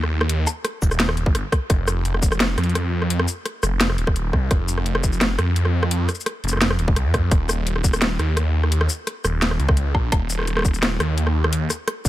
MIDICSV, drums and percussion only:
0, 0, Header, 1, 2, 480
1, 0, Start_track
1, 0, Tempo, 350877
1, 405, Time_signature, 4, 2, 24, 8
1, 16535, End_track
2, 0, Start_track
2, 0, Title_t, "Drums"
2, 47, Note_on_c, 9, 37, 56
2, 184, Note_off_c, 9, 37, 0
2, 287, Note_on_c, 9, 37, 83
2, 403, Note_on_c, 9, 42, 84
2, 424, Note_off_c, 9, 37, 0
2, 540, Note_off_c, 9, 42, 0
2, 643, Note_on_c, 9, 37, 56
2, 643, Note_on_c, 9, 42, 37
2, 643, Note_on_c, 9, 82, 74
2, 780, Note_off_c, 9, 37, 0
2, 780, Note_off_c, 9, 42, 0
2, 780, Note_off_c, 9, 82, 0
2, 883, Note_on_c, 9, 37, 76
2, 883, Note_on_c, 9, 42, 66
2, 1019, Note_off_c, 9, 37, 0
2, 1019, Note_off_c, 9, 42, 0
2, 1123, Note_on_c, 9, 36, 60
2, 1123, Note_on_c, 9, 82, 72
2, 1249, Note_off_c, 9, 82, 0
2, 1249, Note_on_c, 9, 37, 60
2, 1249, Note_on_c, 9, 82, 40
2, 1260, Note_off_c, 9, 36, 0
2, 1363, Note_on_c, 9, 38, 117
2, 1363, Note_on_c, 9, 42, 81
2, 1385, Note_off_c, 9, 37, 0
2, 1385, Note_off_c, 9, 82, 0
2, 1487, Note_on_c, 9, 37, 88
2, 1500, Note_off_c, 9, 38, 0
2, 1500, Note_off_c, 9, 42, 0
2, 1603, Note_on_c, 9, 42, 38
2, 1624, Note_off_c, 9, 37, 0
2, 1727, Note_on_c, 9, 36, 108
2, 1740, Note_off_c, 9, 42, 0
2, 1846, Note_on_c, 9, 37, 55
2, 1846, Note_on_c, 9, 42, 70
2, 1864, Note_off_c, 9, 36, 0
2, 1982, Note_off_c, 9, 37, 0
2, 1982, Note_off_c, 9, 42, 0
2, 2083, Note_on_c, 9, 36, 63
2, 2086, Note_on_c, 9, 37, 89
2, 2086, Note_on_c, 9, 42, 40
2, 2220, Note_off_c, 9, 36, 0
2, 2222, Note_off_c, 9, 37, 0
2, 2222, Note_off_c, 9, 42, 0
2, 2323, Note_on_c, 9, 36, 120
2, 2325, Note_on_c, 9, 37, 58
2, 2325, Note_on_c, 9, 42, 90
2, 2460, Note_off_c, 9, 36, 0
2, 2462, Note_off_c, 9, 37, 0
2, 2462, Note_off_c, 9, 42, 0
2, 2566, Note_on_c, 9, 37, 87
2, 2566, Note_on_c, 9, 82, 69
2, 2702, Note_off_c, 9, 37, 0
2, 2702, Note_off_c, 9, 82, 0
2, 2806, Note_on_c, 9, 42, 64
2, 2933, Note_on_c, 9, 37, 56
2, 2943, Note_off_c, 9, 42, 0
2, 3043, Note_on_c, 9, 36, 63
2, 3045, Note_on_c, 9, 82, 72
2, 3070, Note_off_c, 9, 37, 0
2, 3171, Note_off_c, 9, 82, 0
2, 3171, Note_on_c, 9, 37, 89
2, 3171, Note_on_c, 9, 82, 39
2, 3180, Note_off_c, 9, 36, 0
2, 3286, Note_on_c, 9, 38, 122
2, 3286, Note_on_c, 9, 42, 83
2, 3308, Note_off_c, 9, 37, 0
2, 3308, Note_off_c, 9, 82, 0
2, 3423, Note_off_c, 9, 38, 0
2, 3423, Note_off_c, 9, 42, 0
2, 3526, Note_on_c, 9, 37, 58
2, 3526, Note_on_c, 9, 42, 38
2, 3606, Note_off_c, 9, 42, 0
2, 3606, Note_on_c, 9, 42, 31
2, 3663, Note_off_c, 9, 37, 0
2, 3686, Note_off_c, 9, 42, 0
2, 3686, Note_on_c, 9, 42, 27
2, 3766, Note_off_c, 9, 42, 0
2, 3766, Note_on_c, 9, 37, 85
2, 3766, Note_on_c, 9, 42, 72
2, 3903, Note_off_c, 9, 37, 0
2, 3903, Note_off_c, 9, 42, 0
2, 4130, Note_on_c, 9, 37, 57
2, 4245, Note_on_c, 9, 42, 88
2, 4267, Note_off_c, 9, 37, 0
2, 4370, Note_on_c, 9, 37, 80
2, 4382, Note_off_c, 9, 42, 0
2, 4487, Note_on_c, 9, 82, 65
2, 4507, Note_off_c, 9, 37, 0
2, 4624, Note_off_c, 9, 82, 0
2, 4727, Note_on_c, 9, 37, 51
2, 4727, Note_on_c, 9, 42, 67
2, 4864, Note_off_c, 9, 37, 0
2, 4864, Note_off_c, 9, 42, 0
2, 4966, Note_on_c, 9, 37, 83
2, 4966, Note_on_c, 9, 82, 67
2, 5103, Note_off_c, 9, 37, 0
2, 5103, Note_off_c, 9, 82, 0
2, 5206, Note_on_c, 9, 38, 123
2, 5206, Note_on_c, 9, 42, 84
2, 5331, Note_on_c, 9, 37, 57
2, 5343, Note_off_c, 9, 38, 0
2, 5343, Note_off_c, 9, 42, 0
2, 5447, Note_on_c, 9, 42, 40
2, 5467, Note_off_c, 9, 37, 0
2, 5571, Note_on_c, 9, 36, 110
2, 5571, Note_on_c, 9, 37, 83
2, 5583, Note_off_c, 9, 42, 0
2, 5689, Note_on_c, 9, 42, 73
2, 5708, Note_off_c, 9, 36, 0
2, 5708, Note_off_c, 9, 37, 0
2, 5826, Note_off_c, 9, 42, 0
2, 5927, Note_on_c, 9, 36, 67
2, 5927, Note_on_c, 9, 37, 56
2, 6064, Note_off_c, 9, 36, 0
2, 6064, Note_off_c, 9, 37, 0
2, 6166, Note_on_c, 9, 37, 79
2, 6166, Note_on_c, 9, 42, 83
2, 6167, Note_on_c, 9, 36, 125
2, 6303, Note_off_c, 9, 37, 0
2, 6303, Note_off_c, 9, 42, 0
2, 6304, Note_off_c, 9, 36, 0
2, 6407, Note_on_c, 9, 82, 65
2, 6533, Note_on_c, 9, 37, 55
2, 6544, Note_off_c, 9, 82, 0
2, 6647, Note_on_c, 9, 42, 66
2, 6670, Note_off_c, 9, 37, 0
2, 6772, Note_on_c, 9, 37, 79
2, 6784, Note_off_c, 9, 42, 0
2, 6887, Note_on_c, 9, 36, 64
2, 6888, Note_on_c, 9, 82, 67
2, 6909, Note_off_c, 9, 37, 0
2, 7013, Note_off_c, 9, 82, 0
2, 7013, Note_on_c, 9, 82, 36
2, 7024, Note_off_c, 9, 36, 0
2, 7128, Note_on_c, 9, 37, 50
2, 7128, Note_on_c, 9, 38, 124
2, 7128, Note_on_c, 9, 42, 80
2, 7149, Note_off_c, 9, 82, 0
2, 7265, Note_off_c, 9, 37, 0
2, 7265, Note_off_c, 9, 38, 0
2, 7265, Note_off_c, 9, 42, 0
2, 7368, Note_on_c, 9, 37, 81
2, 7368, Note_on_c, 9, 42, 39
2, 7504, Note_off_c, 9, 37, 0
2, 7504, Note_off_c, 9, 42, 0
2, 7608, Note_on_c, 9, 42, 69
2, 7732, Note_on_c, 9, 37, 52
2, 7745, Note_off_c, 9, 42, 0
2, 7869, Note_off_c, 9, 37, 0
2, 7972, Note_on_c, 9, 37, 81
2, 8087, Note_on_c, 9, 42, 85
2, 8109, Note_off_c, 9, 37, 0
2, 8224, Note_off_c, 9, 42, 0
2, 8327, Note_on_c, 9, 37, 53
2, 8327, Note_on_c, 9, 42, 38
2, 8327, Note_on_c, 9, 82, 29
2, 8410, Note_off_c, 9, 82, 0
2, 8410, Note_on_c, 9, 82, 40
2, 8464, Note_off_c, 9, 37, 0
2, 8464, Note_off_c, 9, 42, 0
2, 8488, Note_off_c, 9, 82, 0
2, 8488, Note_on_c, 9, 82, 52
2, 8567, Note_on_c, 9, 37, 71
2, 8567, Note_on_c, 9, 42, 60
2, 8625, Note_off_c, 9, 82, 0
2, 8704, Note_off_c, 9, 37, 0
2, 8704, Note_off_c, 9, 42, 0
2, 8807, Note_on_c, 9, 42, 38
2, 8869, Note_on_c, 9, 82, 67
2, 8932, Note_on_c, 9, 37, 51
2, 8944, Note_off_c, 9, 42, 0
2, 8990, Note_off_c, 9, 37, 0
2, 8990, Note_on_c, 9, 37, 43
2, 9006, Note_off_c, 9, 82, 0
2, 9049, Note_off_c, 9, 37, 0
2, 9049, Note_on_c, 9, 37, 32
2, 9049, Note_on_c, 9, 38, 124
2, 9049, Note_on_c, 9, 42, 78
2, 9112, Note_off_c, 9, 37, 0
2, 9112, Note_on_c, 9, 37, 28
2, 9173, Note_off_c, 9, 37, 0
2, 9173, Note_on_c, 9, 37, 77
2, 9186, Note_off_c, 9, 38, 0
2, 9186, Note_off_c, 9, 42, 0
2, 9287, Note_on_c, 9, 42, 38
2, 9310, Note_off_c, 9, 37, 0
2, 9410, Note_on_c, 9, 36, 108
2, 9423, Note_off_c, 9, 42, 0
2, 9527, Note_on_c, 9, 37, 52
2, 9527, Note_on_c, 9, 42, 67
2, 9547, Note_off_c, 9, 36, 0
2, 9664, Note_off_c, 9, 37, 0
2, 9664, Note_off_c, 9, 42, 0
2, 9766, Note_on_c, 9, 36, 67
2, 9768, Note_on_c, 9, 37, 77
2, 9768, Note_on_c, 9, 42, 40
2, 9903, Note_off_c, 9, 36, 0
2, 9905, Note_off_c, 9, 37, 0
2, 9905, Note_off_c, 9, 42, 0
2, 10006, Note_on_c, 9, 36, 123
2, 10007, Note_on_c, 9, 37, 54
2, 10007, Note_on_c, 9, 42, 77
2, 10143, Note_off_c, 9, 36, 0
2, 10144, Note_off_c, 9, 37, 0
2, 10144, Note_off_c, 9, 42, 0
2, 10248, Note_on_c, 9, 37, 75
2, 10248, Note_on_c, 9, 82, 68
2, 10385, Note_off_c, 9, 37, 0
2, 10385, Note_off_c, 9, 82, 0
2, 10488, Note_on_c, 9, 42, 61
2, 10613, Note_on_c, 9, 37, 52
2, 10625, Note_off_c, 9, 42, 0
2, 10726, Note_on_c, 9, 36, 62
2, 10728, Note_on_c, 9, 82, 73
2, 10749, Note_off_c, 9, 37, 0
2, 10854, Note_off_c, 9, 82, 0
2, 10854, Note_on_c, 9, 37, 80
2, 10854, Note_on_c, 9, 82, 40
2, 10863, Note_off_c, 9, 36, 0
2, 10967, Note_on_c, 9, 38, 119
2, 10967, Note_on_c, 9, 42, 74
2, 10991, Note_off_c, 9, 37, 0
2, 10991, Note_off_c, 9, 82, 0
2, 11104, Note_off_c, 9, 38, 0
2, 11104, Note_off_c, 9, 42, 0
2, 11210, Note_on_c, 9, 37, 51
2, 11210, Note_on_c, 9, 42, 37
2, 11347, Note_off_c, 9, 37, 0
2, 11347, Note_off_c, 9, 42, 0
2, 11449, Note_on_c, 9, 37, 75
2, 11449, Note_on_c, 9, 42, 62
2, 11585, Note_off_c, 9, 37, 0
2, 11585, Note_off_c, 9, 42, 0
2, 11812, Note_on_c, 9, 37, 51
2, 11927, Note_on_c, 9, 42, 78
2, 11949, Note_off_c, 9, 37, 0
2, 12051, Note_on_c, 9, 37, 79
2, 12064, Note_off_c, 9, 42, 0
2, 12167, Note_on_c, 9, 82, 74
2, 12187, Note_off_c, 9, 37, 0
2, 12304, Note_off_c, 9, 82, 0
2, 12409, Note_on_c, 9, 37, 49
2, 12409, Note_on_c, 9, 42, 62
2, 12546, Note_off_c, 9, 37, 0
2, 12546, Note_off_c, 9, 42, 0
2, 12647, Note_on_c, 9, 37, 85
2, 12647, Note_on_c, 9, 82, 75
2, 12784, Note_off_c, 9, 37, 0
2, 12784, Note_off_c, 9, 82, 0
2, 12888, Note_on_c, 9, 38, 111
2, 12888, Note_on_c, 9, 42, 76
2, 13012, Note_on_c, 9, 37, 53
2, 13025, Note_off_c, 9, 38, 0
2, 13025, Note_off_c, 9, 42, 0
2, 13128, Note_on_c, 9, 42, 38
2, 13149, Note_off_c, 9, 37, 0
2, 13250, Note_on_c, 9, 36, 101
2, 13252, Note_on_c, 9, 37, 85
2, 13264, Note_off_c, 9, 42, 0
2, 13365, Note_on_c, 9, 42, 63
2, 13387, Note_off_c, 9, 36, 0
2, 13388, Note_off_c, 9, 37, 0
2, 13502, Note_off_c, 9, 42, 0
2, 13605, Note_on_c, 9, 36, 63
2, 13607, Note_on_c, 9, 37, 56
2, 13742, Note_off_c, 9, 36, 0
2, 13743, Note_off_c, 9, 37, 0
2, 13846, Note_on_c, 9, 36, 116
2, 13847, Note_on_c, 9, 37, 86
2, 13847, Note_on_c, 9, 42, 82
2, 13982, Note_off_c, 9, 36, 0
2, 13984, Note_off_c, 9, 37, 0
2, 13984, Note_off_c, 9, 42, 0
2, 14088, Note_on_c, 9, 82, 75
2, 14212, Note_on_c, 9, 37, 54
2, 14225, Note_off_c, 9, 82, 0
2, 14247, Note_off_c, 9, 37, 0
2, 14247, Note_on_c, 9, 37, 43
2, 14278, Note_off_c, 9, 37, 0
2, 14278, Note_on_c, 9, 37, 36
2, 14311, Note_off_c, 9, 37, 0
2, 14311, Note_on_c, 9, 37, 30
2, 14329, Note_on_c, 9, 42, 63
2, 14346, Note_off_c, 9, 37, 0
2, 14346, Note_on_c, 9, 37, 22
2, 14383, Note_off_c, 9, 37, 0
2, 14383, Note_on_c, 9, 37, 19
2, 14420, Note_off_c, 9, 37, 0
2, 14420, Note_on_c, 9, 37, 15
2, 14455, Note_off_c, 9, 37, 0
2, 14455, Note_on_c, 9, 37, 79
2, 14466, Note_off_c, 9, 42, 0
2, 14488, Note_off_c, 9, 37, 0
2, 14488, Note_on_c, 9, 37, 67
2, 14531, Note_off_c, 9, 37, 0
2, 14531, Note_on_c, 9, 37, 53
2, 14566, Note_on_c, 9, 36, 62
2, 14569, Note_on_c, 9, 82, 76
2, 14668, Note_off_c, 9, 37, 0
2, 14696, Note_off_c, 9, 82, 0
2, 14696, Note_on_c, 9, 82, 42
2, 14703, Note_off_c, 9, 36, 0
2, 14811, Note_on_c, 9, 37, 55
2, 14811, Note_on_c, 9, 38, 113
2, 14811, Note_on_c, 9, 42, 78
2, 14833, Note_off_c, 9, 82, 0
2, 14947, Note_off_c, 9, 37, 0
2, 14947, Note_off_c, 9, 38, 0
2, 14947, Note_off_c, 9, 42, 0
2, 15050, Note_on_c, 9, 37, 83
2, 15050, Note_on_c, 9, 42, 38
2, 15187, Note_off_c, 9, 37, 0
2, 15187, Note_off_c, 9, 42, 0
2, 15289, Note_on_c, 9, 42, 67
2, 15413, Note_on_c, 9, 37, 57
2, 15426, Note_off_c, 9, 42, 0
2, 15550, Note_off_c, 9, 37, 0
2, 15653, Note_on_c, 9, 37, 83
2, 15768, Note_on_c, 9, 42, 86
2, 15790, Note_off_c, 9, 37, 0
2, 15905, Note_off_c, 9, 42, 0
2, 16007, Note_on_c, 9, 37, 58
2, 16007, Note_on_c, 9, 42, 38
2, 16007, Note_on_c, 9, 82, 69
2, 16144, Note_off_c, 9, 37, 0
2, 16144, Note_off_c, 9, 42, 0
2, 16144, Note_off_c, 9, 82, 0
2, 16246, Note_on_c, 9, 37, 79
2, 16246, Note_on_c, 9, 42, 65
2, 16382, Note_off_c, 9, 37, 0
2, 16382, Note_off_c, 9, 42, 0
2, 16484, Note_on_c, 9, 36, 61
2, 16486, Note_on_c, 9, 82, 73
2, 16535, Note_off_c, 9, 36, 0
2, 16535, Note_off_c, 9, 82, 0
2, 16535, End_track
0, 0, End_of_file